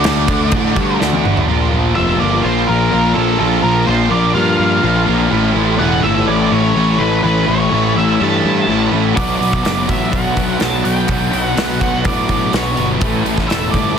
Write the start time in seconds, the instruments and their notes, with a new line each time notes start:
Already playing: overdriven electric guitar D3 A3 D4 F#4, clean electric guitar D4, lead electric guitar D5
0.04 picked electric bass D2, clean electric guitar A3, snare, crash
0.28 picked electric bass D2, overdriven electric guitar D3 A3 D4 F#4, kick, crash
0.50 picked electric bass A2, distorted electric guitar D3 A3 D4, kick, crash
0.75 picked electric bass G2, distorted electric guitar A3 D4, kick, crash
0.99 picked electric bass D2, overdriven electric guitar D3 A3 D4 F#4, snare
1.13 high tom
1.23 picked electric bass A1, distorted electric guitar A3 D4, mid tom
1.37 floor tom
1.48 picked electric bass A#1, overdriven electric guitar A#2 F3 A#3 D4 F4
1.72 picked electric bass A#1, distorted electric guitar F3 A#3
1.95 picked electric bass F1, distorted electric guitar A#2, overdriven electric guitar F3 A#3 D4 F4, lead electric guitar E5
2.20 picked electric bass G1, distorted electric guitar F3, overdriven electric guitar A#3 D4 F4, lead electric guitar D5
2.42 picked electric bass A#1, overdriven electric guitar F3 A#3 D4, lead electric guitar C5
2.46 overdriven electric guitar F4
2.68 picked electric bass A#1, clean electric guitar A#3, lead electric guitar A#4
2.91 picked electric bass A#1, overdriven electric guitar A#2 F3 A#3 D4 F4
3.14 picked electric bass A#1, distorted electric guitar F3, overdriven electric guitar A#3 D4 F4, lead electric guitar A4
3.39 picked electric bass A#1, overdriven electric guitar A#2 F3 A#3 D4 F4, lead electric guitar A4
3.62 picked electric bass A#1, distorted electric guitar F3 A#3, lead electric guitar A#4
3.85 picked electric bass A#1, distorted electric guitar A#2, overdriven electric guitar F3 A#3, lead electric guitar C5
3.90 overdriven electric guitar D4 F4
4.09 picked electric bass A#1, distorted electric guitar F3 A#3, overdriven electric guitar F4, lead electric guitar D5
4.13 overdriven electric guitar A#3 D4
4.34 picked electric bass G2, overdriven electric guitar F3 A#3 D4, clean electric guitar F4, lead electric guitar F5
4.39 overdriven electric guitar F4
4.59 picked electric bass G2, clean electric guitar A#3
4.83 picked electric bass A#1, overdriven electric guitar A#2 F3 A#3 D4 F4
5.06 picked electric bass A#1, distorted electric guitar F3, overdriven electric guitar A#3 D4 F4
5.31 picked electric bass A1, overdriven electric guitar A2 E3 A3 C#4 E4
5.53 picked electric bass A1, distorted electric guitar E3 A3
5.76 picked electric bass E1, distorted electric guitar A2, lead electric guitar F#5
5.81 overdriven electric guitar E3 A3 C#4 E4
6.00 picked electric bass G1, distorted electric guitar E3 A3, lead electric guitar E5
6.04 overdriven electric guitar A3 C#4 E4
6.27 picked electric bass A1, overdriven electric guitar E3 A3 C#4 E4, lead electric guitar D5
6.52 picked electric bass A1, clean electric guitar E3, lead electric guitar C#5
6.76 picked electric bass A1, overdriven electric guitar A2 E3 A3 C#4 E4
6.97 picked electric bass A1, distorted electric guitar E3 A3, overdriven electric guitar E4, lead electric guitar B4
7.02 overdriven electric guitar A3 C#4
7.23 picked electric bass A1, overdriven electric guitar A2 E3 A3 C#4 E4, lead electric guitar B4
7.46 picked electric bass A1, distorted electric guitar E3 A3, lead electric guitar C#5
7.71 picked electric bass A1, distorted electric guitar A2, overdriven electric guitar E3 A3 C#4
7.76 overdriven electric guitar E4
7.95 picked electric bass A1, distorted electric guitar E3 A3, overdriven electric guitar E4, lead electric guitar E5
7.99 overdriven electric guitar A3 C#4
8.21 picked electric bass G2, overdriven electric guitar E3 A3 C#4 E4, lead electric guitar A5
8.44 picked electric bass G2, clean electric guitar E3
8.68 picked electric bass A1, overdriven electric guitar A2 E3 A3 C#4 E4
8.91 picked electric bass A1, distorted electric guitar E3 A3, overdriven electric guitar C#4 E4
8.95 overdriven electric guitar A3
9.17 picked electric bass B1, overdriven electric guitar B2 F#3 B3 D4 F#4, lead electric guitar D5, kick, open hi-hat
9.38 picked electric bass B1, distorted electric guitar F#3 B3
9.43 open hi-hat
9.53 kick
9.63 picked electric bass F#1, distorted electric guitar B2, overdriven electric guitar F#3 B3 D4 F#4, lead electric guitar D5, snare, open hi-hat
9.88 picked electric bass A1, distorted electric guitar F#3, overdriven electric guitar B3 D4 F#4, lead electric guitar E5, kick, open hi-hat
10.11 picked electric bass B1, overdriven electric guitar B2 F#3 B3 D4 F#4, lead electric guitar F#5, kick, open hi-hat
10.36 picked electric bass B1, clean electric guitar F#3, kick, open hi-hat
10.60 picked electric bass B1, overdriven electric guitar B2 F#3 B3 D4 F#4, lead electric guitar A5, snare, open hi-hat
10.83 picked electric bass B1, distorted electric guitar F#3 B3, overdriven electric guitar D4 F#4, lead electric guitar G5, open hi-hat
10.88 overdriven electric guitar B3
11.08 picked electric bass B1, overdriven electric guitar B2 F#3 B3 D4 F#4, kick, open hi-hat
11.30 picked electric bass B1, distorted electric guitar F#3 B3, lead electric guitar G5, open hi-hat
11.43 lead electric guitar F#5
11.55 picked electric bass B1, distorted electric guitar B2, overdriven electric guitar F#3 B3 D4, snare, open hi-hat
11.59 overdriven electric guitar F#4
11.80 picked electric bass B1, distorted electric guitar F#3 B3, overdriven electric guitar D4 F#4, kick, open hi-hat
11.84 overdriven electric guitar B3
12.04 picked electric bass A2, overdriven electric guitar B2 F#3 B3 D4 F#4, lead electric guitar D5, kick, open hi-hat
12.29 picked electric bass A2, clean electric guitar F#3, kick, open hi-hat
12.52 picked electric bass B1, overdriven electric guitar B2 F#3 B3 D4 F#4, lead electric guitar C#5, snare, open hi-hat
12.76 picked electric bass G1, distorted electric guitar F#3, overdriven electric guitar B3 D4 F#4, open hi-hat
13.00 picked electric bass A1, overdriven electric guitar A2 E3 A3 C#4 A4, kick, open hi-hat
13.24 picked electric bass A1, distorted electric guitar E3 A3, open hi-hat
13.38 kick, snare
13.47 picked electric bass E1, distorted electric guitar A2, overdriven electric guitar E3 A3 C#4, lead electric guitar E5, open hi-hat
13.51 overdriven electric guitar A4, snare
13.71 picked electric bass G1, distorted electric guitar E3 A3, overdriven electric guitar A4, lead electric guitar D5, kick, open hi-hat
13.76 overdriven electric guitar A3 C#4
13.95 overdriven electric guitar A2